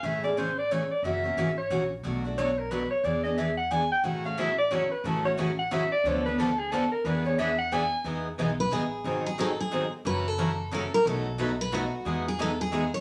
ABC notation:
X:1
M:3/4
L:1/16
Q:"Swing" 1/4=180
K:A
V:1 name="Soprano saxophone"
e2 d2 =c2 d2 ^c2 d2 | e6 c4 z2 | z4 c2 _B2 =B2 c2 | d2 ^d2 e2 f2 g2 =g2 |
f2 =f2 e2 d2 c2 B2 | A2 c2 z2 f2 e2 d2 | c2 B2 A2 G2 A2 _B2 | B2 c2 e2 f2 g3 z |
[K:E] z12 | z12 | z12 | z12 |
z12 |]
V:2 name="Steel-string acoustic guitar"
z12 | z12 | z12 | z12 |
z12 | z12 | z12 | z12 |
[K:E] z6 B2 G4- | G2 G2 A2 G4 z2 | B2 A6 A2 ^A2 | A4 z2 B2 F4- |
F2 G2 A2 G4 c2 |]
V:3 name="Steel-string acoustic guitar"
z12 | z12 | z12 | z12 |
[C,F,CE]2 z2 [C,F,CE]2 z2 [C,F,CE]2 z2 | [C,F,CE]2 z2 [C,F,CE]2 z2 [C,F,CE]2 z2 | [D,=F,B,DA]2 z2 [D,F,B,DA]2 z2 [D,F,B,DA]2 z2 | [E,B,DGB]2 z2 [E,B,DGB]2 z2 [E,B,DGB]2 z2 |
[K:E] [E,G,B,DG]2 z2 [E,G,B,DG]2 z2 [E,G,B,DG]2 z2 | [D,F,^B,DG]2 z2 [D,F,B,DG]2 z2 [D,F,B,DG]2 z2 | [F,CE^A]2 z2 [F,CEA]2 z2 [F,CEA]2 z2 | [B,,F,A,DFB]2 z2 [B,,F,A,DFB]2 z2 [B,,F,A,DFB]2 z2 |
[E,G,B,DG]2 z2 [E,G,B,DG]2 z2 [E,G,B,DG]2 z2 |]
V:4 name="Steel-string acoustic guitar"
[C,E,A,CG]2 [A,CG]2 [C,E,A,CG]2 z2 [C,E,A,CG]2 z2 | [C,E,^A,CF]2 [A,CF]2 [C,E,A,CF]2 z2 [C,E,A,CF]2 z2 | [B,,F,A,DF]2 [A,DF]2 [B,,F,A,DF]2 z2 [B,,F,A,DF]2 z2 | [E,B,DG]2 [B,DG]2 [E,B,DG]2 z2 [E,B,DG]2 z2 |
[C,E,A,CF]2 [A,CF]2 [C,E,A,CF]2 z2 [C,E,A,CF]2 z2 | [C,E,A,CF]2 [A,CF]2 [C,E,A,CF]2 z2 [C,E,A,CF]2 z2 | [D,=F,B,DA]2 [B,DA]2 [D,F,B,DA]2 z2 [D,F,B,DA]2 z2 | [E,B,DG]2 [B,DG]2 [E,B,DG]2 z2 [E,B,DG]2 z2 |
[K:E] [E,B,DG]2 z2 [E,B,DG]2 z2 [E,B,DG]2 z2 | [D,F,^B,DG]2 z2 [D,F,B,DG]2 z2 [D,F,B,DG]2 z2 | [C,E,^A,CF]2 z2 [C,E,A,CF]2 z2 [C,E,A,CF]2 z2 | [B,,F,A,DF]2 z2 [B,,F,A,DF]2 z2 [B,,F,A,DF]2 z2 |
[E,G,B,DG]2 z2 [E,G,B,DG]2 z2 [E,G,B,DG]2 z2 |]
V:5 name="Upright bass" clef=bass
A,,,12 | F,,,4 G,,,4 ^A,,,4 | B,,,12 | E,,12 |
A,,,12 | A,,,12 | D,,12 | E,,12 |
[K:E] E,,4 B,,,4 A,,,4 | G,,,12 | F,,,12 | B,,,12 |
E,,12 |]